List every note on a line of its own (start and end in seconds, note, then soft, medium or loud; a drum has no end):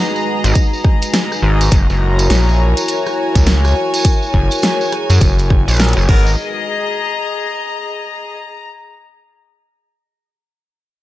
0.00 1.68 G#3 medium
0.00 1.68 D#4 medium
0.00 4.01 F#4 medium
0.00 2.63 G#4 medium
0.00 1.68 B4 medium
0.00 2.48 D#5 medium
0.00 3.61 A#5 medium
0.16 tambourine soft
0.44 0.54 G#1 loud
0.44 closed hi-hat soft
0.44 tambourine medium
0.55 kick loud
0.55 closed hi-hat medium
0.55 tambourine medium
0.73 tambourine soft
0.84 kick loud
0.84 cross-stick soft
1.02 closed hi-hat medium
1.02 tambourine medium
1.14 snare loud
1.14 closed hi-hat medium
1.14 tambourine medium
1.32 cross-stick medium
1.32 tambourine soft
1.43 1.70 G#1 medium
1.61 closed hi-hat medium
1.61 tambourine medium
1.71 1.87 F#1 medium
1.71 6.05 E4 medium
1.71 6.09 F#4 medium
1.71 6.05 A#4 medium
1.71 kick loud
1.71 closed hi-hat medium
1.71 tambourine medium
1.90 2.28 F#1 loud
1.90 tambourine soft
2.10 6.09 C#5 medium
2.19 closed hi-hat medium
2.19 tambourine medium
2.30 2.74 A#1 medium
2.30 snare loud
2.30 closed hi-hat medium
2.30 tambourine medium
2.40 6.09 G#5 medium
2.49 tambourine soft
2.77 closed hi-hat medium
2.77 tambourine medium
2.88 closed hi-hat medium
2.88 tambourine medium
3.06 cross-stick medium
3.06 tambourine soft
3.35 3.74 C#2 loud
3.35 kick medium
3.35 closed hi-hat medium
3.35 tambourine medium
3.47 snare loud
3.47 closed hi-hat medium
3.47 tambourine medium
3.65 cross-stick medium
3.65 tambourine soft
3.94 closed hi-hat soft
3.94 tambourine medium
4.05 6.06 G#4 medium
4.05 kick loud
4.05 closed hi-hat medium
4.05 tambourine medium
4.22 tambourine soft
4.34 4.49 F#1 loud
4.34 kick medium
4.51 closed hi-hat medium
4.51 tambourine medium
4.62 snare loud
4.62 closed hi-hat medium
4.62 tambourine medium
4.81 tambourine soft
4.92 cross-stick soft
4.92 closed hi-hat soft
5.10 5.19 F#2 loud
5.10 closed hi-hat medium
5.10 tambourine medium
5.21 5.65 F#1 medium
5.21 kick medium
5.21 closed hi-hat medium
5.21 tambourine medium
5.39 closed hi-hat soft
5.39 tambourine soft
5.50 kick loud
5.50 cross-stick soft
5.68 5.94 A#1 loud
5.68 closed hi-hat soft
5.68 tambourine medium
5.71 closed hi-hat soft
5.74 closed hi-hat soft
5.77 snare loud
5.77 closed hi-hat soft
5.80 closed hi-hat medium
5.80 tambourine medium
5.84 closed hi-hat soft
5.89 closed hi-hat soft
5.93 6.08 F#1 loud
5.93 closed hi-hat soft
5.93 tambourine soft
5.98 cross-stick medium
6.08 6.36 G#1 medium
6.08 6.35 G#3 medium
6.08 6.32 B3 medium
6.08 6.35 D#4 medium
6.08 6.32 D#4 medium
6.08 6.35 F#4 medium
6.08 6.32 F#4 medium
6.08 8.38 G#4 medium
6.08 6.32 A#4 loud
6.08 6.35 B4 medium
6.08 kick loud
6.08 crash medium
6.20 8.38 D#5 medium
6.27 tambourine medium
6.59 8.67 A#5 medium